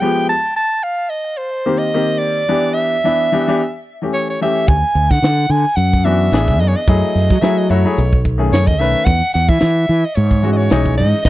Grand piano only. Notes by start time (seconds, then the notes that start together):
0.02 F3 G#3 B3 G4
1.66 D#3 A#3 C4 G4
1.94 D#3 A#3 C4 G4
2.48 E3 B3 D4 G4
3.04 E3 B3 D4 E4
3.32 E3 B3 D4 G4
3.47 E3 B3 D4 G4
4.02 E3 A3 C#4 G4
4.41 E3 A3 C#4 G4
6.04 E3 B3 D4 F#4
6.32 E3 B3 D4 G#4
6.88 F#3 A3 E4 G#4
7.41 F#3 A3 E4 G#4
7.70 F#3 A3 E4 F#4
7.85 F#3 A3 E4 G#4
8.38 D#3 A3 C#4 G#4
8.79 D#3 A3 C#4 B4
10.43 E3 G#3 C#4 F#4
10.71 E3 G#3 C#4 D#4